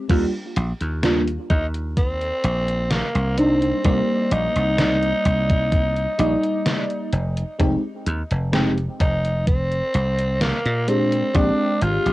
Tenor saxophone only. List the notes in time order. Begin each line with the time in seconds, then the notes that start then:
1.50 D#4
1.97 C4
2.91 A#3
3.38 C4
3.85 C4
4.32 D#4
9.00 D#4
9.47 C4
10.41 A#3
10.88 C4
11.35 D4
11.82 F4